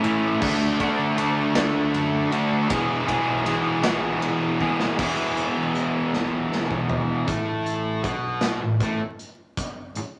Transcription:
0.03 picked electric bass A2, distorted electric guitar A2 E3 A3 C#4 E4, ride
0.41 picked electric bass D2, distorted electric guitar D3 A3 D4 F#4, kick, crash
0.80 distorted electric guitar D3 A3 D4 F#4, kick, ride
0.99 picked electric bass D3
1.17 distorted electric guitar D3 A3 D4 F#4, ride
1.55 distorted electric guitar D3 A3 D4 F#4, picked electric bass D3, snare, ride
1.94 picked electric bass F#2, ride
2.31 distorted electric guitar D3 A3 D4 F#4, ride
2.52 picked electric bass D2
2.68 distorted electric guitar E2 B2 E3 G#3 B3 G#4, picked electric bass E2, kick, ride
3.06 distorted electric guitar E2 B2 E3 G#3 B3 G#4, kick, ride
3.28 picked electric bass B1
3.45 distorted electric guitar E2 B2 E3 G#3 B3 G#4, ride
3.82 picked electric bass B1, distorted electric guitar E2 B2 E3 G#3 B3 G#4, snare, ride
4.22 ride
4.60 distorted electric guitar E2 B2 E3 G#3 B3 G#4, picked electric bass E3, kick
4.80 snare
4.98 distorted electric guitar E2 B2 E3 G#3 B3 E4 G#4, picked electric bass E2, kick, crash
5.37 closed hi-hat
5.57 picked electric bass E3
5.75 closed hi-hat
6.13 picked electric bass B1, snare
6.52 snare
6.71 picked electric bass B1, kick
6.89 floor tom
7.27 picked electric bass A1, distorted electric guitar A2 A3, kick, closed hi-hat
7.66 closed hi-hat
8.04 picked electric bass B1, distorted electric guitar B2 B3, kick, closed hi-hat
8.41 snare, closed hi-hat
8.61 picked electric bass A1, distorted electric guitar A2
8.80 picked electric bass A1, distorted electric guitar A2 A3, kick, closed hi-hat
9.19 closed hi-hat
9.57 kick, closed hi-hat
9.94 muted picked electric bass stroke, muted distorted electric guitar stroke, closed hi-hat

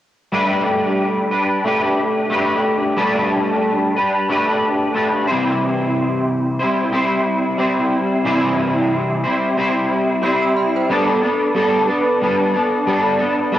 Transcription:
0.32 clean electric guitar G3 A3 D4 G4 B4
1.31 clean electric guitar D4 G4 B4
1.64 clean electric guitar A3 D4 G4 B4
2.30 clean electric guitar A3 D4 G4 B4
2.96 clean electric guitar G3 A3 D4 G4 B4
3.96 clean electric guitar D4 G4 B4
4.29 clean electric guitar A3 D4 G4 B4
4.95 clean electric guitar A3 D4 G4 B4
5.27 clean electric guitar E3 G3 C4 E4 C5
5.33 clean electric guitar C3
6.59 clean electric guitar G3 C4 E4 C5
6.92 clean electric guitar G3 C4 E4 C5
7.58 clean electric guitar G3 C4 E4 C5
8.25 clean electric guitar C3 E3 G3 C4 E4 C5
9.24 clean electric guitar G3 C4 E4 C5
9.57 clean electric guitar G3 C4 E4 C5
10.22 clean electric guitar G3 C4 E4 C5, soft synth lead G4, synth bell C6 G6
10.42 synth bell E6
10.56 synth bell G5 C6
10.76 synth bell C5 G5
10.89 clean electric guitar G3 B3 D4 A4, soft synth lead A4
11.22 clean electric guitar B3 D4 A4
11.55 clean electric guitar G3 B3 D4 A4, soft synth lead A4
11.87 clean electric guitar B3 D4 A4, soft synth lead B4
12.22 clean electric guitar G3 B3 D4 A4, soft synth lead B4
12.54 clean electric guitar B3 D4 A4
12.87 clean electric guitar G3 B3 D4 A4, soft synth lead D5
13.19 clean electric guitar B3 D4 A4
13.52 clean electric guitar G3 B3 D4 A4

